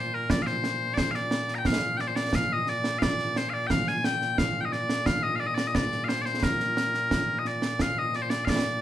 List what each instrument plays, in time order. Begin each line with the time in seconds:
Already playing: bagpipes A#2 C5
0.14 bagpipes A#4
0.30 bagpipes D5, concert bass drum, snare
0.42 bagpipes F5
0.47 bagpipes C5, snare
0.64 snare
0.94 bagpipes D5, concert bass drum, snare
0.98 bagpipes C5
1.11 bagpipes F5, snare
1.15 bagpipes D5
1.31 snare
1.48 snare
1.55 bagpipes G5 A#5
1.65 bagpipes F5, concert bass drum, snare
1.97 bagpipes D5 G5, snare
2.08 bagpipes C5
2.16 bagpipes D5, snare
2.33 bagpipes F5, concert bass drum, snare
2.53 bagpipes D#5
2.67 bagpipes D5, snare
2.84 snare
2.99 bagpipes F5, concert bass drum, snare
3.03 bagpipes D5
3.19 snare
3.36 bagpipes C5, snare
3.50 bagpipes D5 F5
3.67 bagpipes F5 G5, concert bass drum, snare
3.87 bagpipes G#5, snare
4.04 bagpipes G5, snare
4.22 snare
4.38 bagpipes F5, concert bass drum, snare
4.61 bagpipes G5
4.65 bagpipes D#5
4.73 bagpipes D5, snare
4.90 snare
5.06 bagpipes F5, concert bass drum, snare
5.23 bagpipes D#5
5.36 bagpipes F5
5.40 bagpipes D5
5.47 bagpipes D#5
5.55 bagpipes D5, snare
5.67 bagpipes D#5
5.75 bagpipes D5, concert bass drum, snare
5.92 snare
6.04 bagpipes F5
6.09 bagpipes C5, snare
6.22 bagpipes C5 D5
6.26 snare
6.43 bagpipes A#4, concert bass drum, snare
6.60 snare
6.77 snare
6.94 snare
7.11 concert bass drum, snare
7.39 bagpipes D#5
7.45 bagpipes D5, snare
7.62 snare
7.79 bagpipes F5, concert bass drum, snare
7.98 bagpipes D#5
8.14 bagpipes D5, snare
8.22 bagpipes C5
8.30 bagpipes D5, snare
8.45 bagpipes F5, concert bass drum, snare
8.50 bagpipes D5
8.65 snare